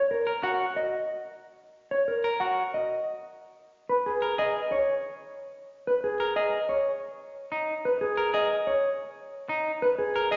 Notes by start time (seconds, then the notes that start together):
Already playing: C#5
0.11 A#4
0.27 A#4
0.43 F#4 F#5
0.76 D#5
1.91 C#5
2.08 A#4
2.24 A#4
2.40 F#4 F#5
2.74 D#5
3.89 B4
4.06 G#4
4.22 A#4
4.38 G#4 D#5
4.72 C#5
5.87 B4
6.04 G#4
6.20 A#4
6.36 G#4 D#5
6.69 C#5
7.52 D#4
7.85 B4
8.01 G#4
8.17 A#4
8.34 G#4 D#5
8.67 C#5
9.49 D#4
9.82 B4
9.98 G#4
10.16 A#4
10.31 G#4 D#5